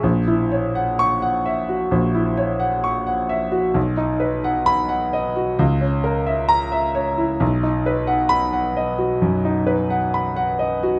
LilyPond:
\new Staff \with { instrumentName = "Grand piano" } { \time 4/4 \key b \major \tempo 4 = 66 << { r4 cis'''8 r2 r8 | r4 b''8 r4. ais''8 r8 | r4 b''8 r2 r8 | } \\ { ais,,16 e'16 cis''16 fis''8 fis''16 e''16 fis'16 ais,,16 e'16 cis''16 fis''16 cis'''16 fis''16 e''16 fis'16 | b,,16 dis'16 b'16 fis''8 fis''16 dis''16 fis'16 cis,16 cis'16 ais'16 e''8 e''16 cis''16 e'16 | b,,16 dis'16 b'16 fis''8 fis''16 dis''16 fis'16 fis,16 dis'16 b'16 fis''16 b''16 fis''16 dis''16 fis'16 | } >> }